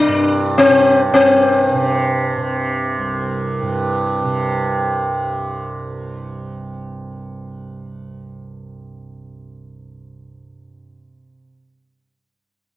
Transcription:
Already playing: C2 C3 D4
0.08 G2
0.58 C4
0.69 C3
1.11 G2 C4
1.74 C3
2.38 C3
2.98 C2
3.62 G2
4.24 C3

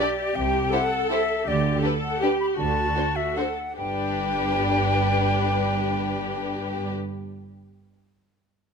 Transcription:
0.00 D4 G4 D5
0.36 C2 C3 G5
0.73 E4 G4 A4 C5 F#5
1.10 E4 G4 C5 E5
1.47 D2 D3 G4 D5
1.83 D4 G4 A4 B4
2.03 F#5
2.22 D4 G4 B4 G5
2.40 B5
2.58 D2 D3 F#4 A5
2.96 D4 F#4 C5
3.16 E5
3.37 D4 F#4 A4 C5 F#5
3.77 G1 G2 D4 G4 B4 G5

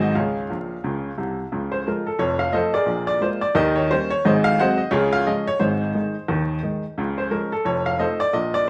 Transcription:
Already playing: G#1 G#2 F#3 G#3 D#4 F#4 G#4 C5
0.02 D#5
0.15 C#2 C#3 G#4 C#5 F5
0.50 A#1 A#2
0.84 C#2 C#3
1.18 C2 C3
1.52 C#2 C#3
1.72 C5
1.87 F3 G#3 F4 A#4
2.06 A4
2.19 F1 F2 C#5
2.39 F5
2.53 F3 A3 F4 A4 C5 D#5
2.74 G#4 A#4 D5
2.86 A#1 A#2
3.07 D5
3.21 G#3 A#3 F4 C5
3.41 D5
3.55 D#2 D#3 G4 A#4 D#5
3.76 C#5
3.91 G3 A#3 C#4 C5
4.10 C#5
4.25 G#1 G#2 G#4 C5 D#5
4.44 F5
4.60 F#3 G#3 C4 C5 D#5 F#5
4.77 D#5
4.91 C#2 C#3 F4 G#4 C#5
5.13 F5
5.27 F3 G#3 C#4 D#5
5.47 C#5
5.60 G#1 G#2 D#4 G#4 C5
5.94 D#3 G#3 D#4
6.28 D#2 D#3
6.63 D#3 G#3 D#4
6.98 C#2 C#3
7.18 C5
7.31 F3 G#3 C#4 A#4
7.52 A4
7.65 F1 F2 C#5
7.86 F5
7.99 F3 A3 D#4 A4 C5 D#5
8.20 D5
8.33 A#1 A#2 D#5
8.54 D5

